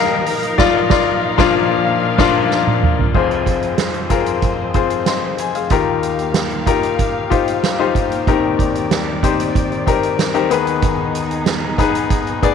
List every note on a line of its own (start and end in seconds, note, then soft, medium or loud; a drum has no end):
0.00 0.23 D#2 medium
0.00 0.25 D#3 medium
0.00 0.29 D#3 medium
0.00 0.28 A#3 medium
0.00 0.29 D#4 medium
0.00 3.11 D#4 medium
0.00 0.23 G4 medium
0.00 0.29 G4 medium
0.00 0.55 A#4 medium
0.00 3.11 A#4 medium
0.00 0.28 C5 medium
0.00 0.28 D5 medium
0.00 0.28 D#5 loud
0.00 0.60 F5 loud
0.26 3.12 A#2 medium
0.26 3.12 F3 medium
0.26 3.12 F5 medium
0.26 open hi-hat medium
0.43 closed hi-hat medium
0.58 0.81 F4 loud
0.58 0.80 D5 loud
0.58 kick loud
0.58 snare loud
0.58 crash medium
0.90 1.13 F4 loud
0.90 1.12 D5 loud
0.90 kick loud
0.90 snare loud
1.38 1.60 A#2 loud
1.38 1.60 F3 loud
1.38 1.61 D4 loud
1.38 1.61 F4 loud
1.38 1.60 D5 loud
1.38 kick loud
1.38 snare loud
2.18 2.40 A#2 loud
2.18 2.40 F3 medium
2.18 2.41 D4 loud
2.18 2.41 F4 loud
2.18 2.40 D5 loud
2.18 kick loud
2.18 snare loud
2.18 crash medium
2.51 snare medium
2.67 high tom medium
2.83 mid tom loud
2.99 floor tom loud
3.15 5.67 F1 medium
3.15 5.67 F2 medium
3.15 5.68 F2 medium
3.15 5.68 F3 medium
3.15 3.83 C4 medium
3.15 5.68 C4 medium
3.15 3.83 F4 medium
3.15 5.68 G#4 medium
3.15 3.83 G#4 medium
3.15 5.68 C5 medium
3.15 3.83 C5 medium
3.15 kick loud
3.15 crash medium
3.31 closed hi-hat soft
3.46 kick medium
3.46 closed hi-hat medium
3.62 closed hi-hat soft
3.78 snare loud
3.78 closed hi-hat medium
3.94 closed hi-hat soft
4.10 4.56 C4 medium
4.10 4.56 F4 medium
4.10 4.56 G#4 medium
4.10 4.56 A#4 medium
4.10 kick medium
4.10 snare soft
4.10 closed hi-hat medium
4.26 closed hi-hat soft
4.42 kick medium
4.42 closed hi-hat medium
4.74 5.09 C4 medium
4.74 5.09 F4 medium
4.74 5.07 G#4 medium
4.74 5.07 C5 medium
4.74 kick medium
4.74 closed hi-hat medium
4.90 closed hi-hat soft
5.06 5.38 D#5 soft
5.06 5.37 C6 medium
5.06 snare medium
5.06 closed hi-hat medium
5.38 5.55 C5 medium
5.38 5.54 G#5 medium
5.38 closed hi-hat medium
5.55 5.86 G#4 soft
5.55 5.85 F5 medium
5.55 closed hi-hat soft
5.70 12.54 D#2 medium
5.70 8.23 D#2 medium
5.70 8.24 D#3 medium
5.70 8.23 D#3 medium
5.70 10.47 A#3 medium
5.70 6.39 D#4 medium
5.70 6.39 F4 medium
5.70 10.47 G4 medium
5.70 6.39 G4 medium
5.70 6.40 A#4 medium
5.70 8.25 F5 medium
5.70 kick medium
5.70 closed hi-hat medium
6.03 closed hi-hat medium
6.19 closed hi-hat soft
6.34 snare loud
6.34 closed hi-hat medium
6.50 closed hi-hat soft
6.66 7.12 D#4 medium
6.66 7.12 F4 medium
6.66 7.13 G4 medium
6.66 7.13 A#4 medium
6.66 kick medium
6.66 closed hi-hat medium
6.83 closed hi-hat medium
6.99 kick medium
6.99 closed hi-hat medium
7.30 7.65 D#4 medium
7.30 7.65 F4 medium
7.30 7.65 G4 medium
7.30 7.65 C5 medium
7.30 kick medium
7.30 closed hi-hat medium
7.48 closed hi-hat soft
7.63 snare medium
7.63 closed hi-hat medium
7.79 8.13 D#4 medium
7.79 8.13 F4 medium
7.79 8.13 G4 medium
7.79 8.14 C5 medium
7.95 kick medium
7.95 closed hi-hat medium
8.12 closed hi-hat soft
8.27 10.48 D#2 medium
8.27 12.54 D#3 medium
8.27 10.48 D#3 medium
8.27 8.96 C4 medium
8.27 8.96 D#4 medium
8.27 8.96 G4 medium
8.27 8.96 A#4 medium
8.27 10.49 D5 medium
8.27 kick loud
8.27 closed hi-hat medium
8.59 kick medium
8.59 closed hi-hat medium
8.75 closed hi-hat soft
8.91 snare loud
8.91 closed hi-hat medium
9.23 9.69 C4 medium
9.23 9.69 D#4 medium
9.23 9.69 G4 medium
9.23 9.69 C5 medium
9.23 kick medium
9.23 closed hi-hat medium
9.40 closed hi-hat medium
9.55 kick medium
9.55 closed hi-hat medium
9.72 closed hi-hat soft
9.86 10.21 C4 medium
9.86 10.21 D#4 medium
9.86 10.21 G4 medium
9.86 10.21 A#4 medium
9.86 kick medium
9.86 closed hi-hat medium
10.03 closed hi-hat soft
10.19 snare medium
10.19 closed hi-hat medium
10.34 10.51 C4 medium
10.34 10.49 D#4 medium
10.34 10.51 G4 medium
10.34 10.51 A#4 medium
10.34 closed hi-hat soft
10.50 12.54 D#2 medium
10.50 12.54 D#3 medium
10.50 11.53 B3 medium
10.50 12.54 B3 medium
10.50 11.53 D#4 medium
10.50 12.54 D#4 medium
10.50 11.53 G#4 medium
10.50 12.54 G#4 medium
10.50 11.54 B4 medium
10.50 closed hi-hat medium
10.67 closed hi-hat soft
10.82 kick medium
10.82 closed hi-hat medium
11.15 closed hi-hat medium
11.31 closed hi-hat soft
11.46 snare loud
11.46 closed hi-hat medium
11.78 12.24 B3 medium
11.78 12.24 D#4 medium
11.78 12.25 G#4 medium
11.78 12.25 B4 medium
11.78 kick medium
11.78 snare soft
11.78 closed hi-hat medium
11.95 closed hi-hat medium
12.10 kick medium
12.10 closed hi-hat medium
12.27 closed hi-hat soft
12.42 12.54 B3 medium
12.42 12.54 D#4 medium
12.42 12.54 G#4 medium
12.42 12.54 D5 loud
12.42 kick medium
12.42 closed hi-hat medium